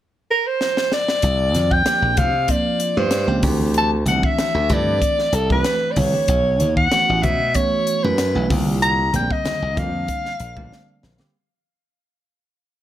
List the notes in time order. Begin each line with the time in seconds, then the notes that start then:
0.31 A#4
0.47 C5
0.61 snare
0.77 snare
0.92 D5, snare
1.08 snare
1.22 C2, kick, closed hi-hat
1.54 F2, snare, closed hi-hat, low conga
1.71 G5, kick
1.85 F3 A#3 C4 D4 G4, muted slap bass stroke, snare, closed hi-hat
2.02 A#1
2.17 C3 F5, kick, closed hi-hat, high conga, low conga
2.48 F3 A#3 C4 D4 F4 D5, kick, closed hi-hat
2.80 closed hi-hat
2.97 G2 C5, high conga
3.11 snare, closed hi-hat
3.27 C#2 F3 A#3 C4 D4 G4
3.43 D2 E3 A3 C4 D4 G4, kick, open hi-hat, low conga
3.74 A5, closed hi-hat
4.06 C2 E3 A3 C4 D4 F#4 F#5, closed hi-hat, low conga
4.23 E5, kick
4.38 muted slap bass stroke, snare, closed hi-hat
4.55 D2
4.69 G2 E3 A3 C4 D4 A4 D5, kick, closed hi-hat, high conga, low conga
5.02 kick, closed hi-hat
5.19 snare
5.32 C2 A4, closed hi-hat
5.50 E3 A3 C4 D4 G4 B4, kick, high conga
5.64 snare, closed hi-hat
5.91 D5
5.96 C2 C#5, kick, open hi-hat, low conga
6.13 E3 A3 C4 D4 G4
6.28 B1, kick, closed hi-hat
6.60 D#2, closed hi-hat, low conga
6.77 F#5, kick
6.92 E3 A3 B3 C#4 F#4, muted slap bass stroke, snare, closed hi-hat
7.09 A1
7.23 B2 E5, kick, closed hi-hat, high conga, low conga
7.54 E3 A3 B3 C#4 F#4 C#5, kick, closed hi-hat
7.87 closed hi-hat
8.04 F#2 B4, high conga
8.18 snare, closed hi-hat
8.35 B1 E3 A3 B3 C#4 E4
8.49 C2 D3 G3 A#3 C4 F4, kick, open hi-hat, low conga
8.82 A#5, closed hi-hat
9.12 A#1 D3 G3 A#3 C4 G4 G5, closed hi-hat, high conga, low conga
9.31 D#5, kick
9.45 muted slap bass stroke, snare, closed hi-hat, low conga
9.62 C2
9.76 F2 D3 G3 A#3 C4 D4 F5, kick, closed hi-hat, high conga, low conga
10.08 kick, closed hi-hat
10.25 snare
10.40 A#1, closed hi-hat
10.56 D3 G3 A#3 C4 D4, kick, high conga
10.72 snare
11.03 A#1, snare, low conga
11.19 D3 G3 A#3 C4 G4, snare